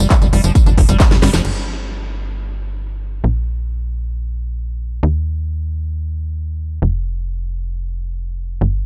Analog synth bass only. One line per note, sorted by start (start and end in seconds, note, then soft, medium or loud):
0.22 0.29 F1 medium
0.33 0.40 F1 loud
0.44 0.52 F1 medium
0.66 0.74 F1 medium
0.78 0.85 F1 loud
0.89 0.96 F1 medium
1.11 1.19 F1 medium
1.22 1.30 G1 loud
1.34 1.41 F1 medium
1.45 3.22 G1 medium
3.24 5.01 A#1 medium
5.03 6.80 D#2 medium
6.82 8.59 F1 medium
8.61 8.86 G1 medium